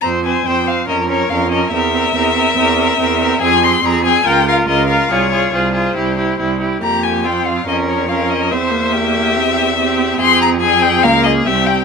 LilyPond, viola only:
\new Staff \with { instrumentName = "Viola" } { \time 4/4 \key f \minor \tempo 4 = 142 c'8 c'8 c'8 c'8 des'8 des'8 des'8 des'8 | c'8 c'8 c'8 c'8 c'8 c'8 c'8 c'8 | c'8 c'8 c'8 c'8 f'8 f'8 f'8 f'8 | f'8 f'8 f'8 f'8 e'8 e'8 e'8 e'8 |
bes4 c'4 des'4 des'4 | c'8 bes4. c'4 c'4 | c'4 c'4 bes4 c'4 | }